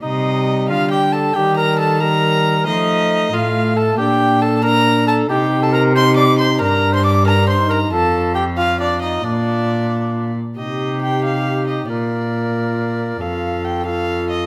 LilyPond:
<<
  \new Staff \with { instrumentName = "Violin" } { \time 6/8 \key c \dorian \tempo 4. = 91 ees''4. f''8 g''8 a''8 | g''8 bes''8 a''8 bes''4. | ees''4. f''4 a''8 | g''4 a''8 bes''4 a''8 |
g''8. a''16 bes''8 c'''8 d'''8 c'''8 | bes''8. c'''16 d'''8 bes''8 c'''8 bes''8 | a''4 g''8 f''8 d''8 ees''8 | d''2~ d''8 r8 |
ees''4 g''8 f''4 ees''8 | d''2. | f''4 g''8 f''4 ees''8 | }
  \new Staff \with { instrumentName = "Cor anglais" } { \time 6/8 \key c \dorian ees'4. f'8 g'8 a'8 | g'8 bes'8 a'8 bes'4. | ees'4. f'4 a'8 | g'4 a'8 bes'4 a'8 |
g'8. a'16 bes'8 c''8 d''8 c''8 | bes'8. c''16 d''8 bes'8 c''8 bes'8 | a'4 g'8 f'8 d'8 ees'8 | d'2~ d'8 r8 |
g'2. | bes'2. | a'4. a'4. | }
  \new Staff \with { instrumentName = "Trombone" } { \time 6/8 \key c \dorian g2. | g4. g4. | a4. a4. | d'4. d'4. |
ees'4. ees'4. | d'4. d'8. ees'8. | f'4. f'4. | f'2~ f'8 r8 |
ees'2. | f'2. | f'4. f'4. | }
  \new Staff \with { instrumentName = "Cello" } { \clef bass \time 6/8 \key c \dorian c4. d4. | ees2. | f4. a,4. | bes,2. |
c2. | g,2. | f,2. | bes,2~ bes,8 r8 |
c2. | bes,2. | f,2. | }
>>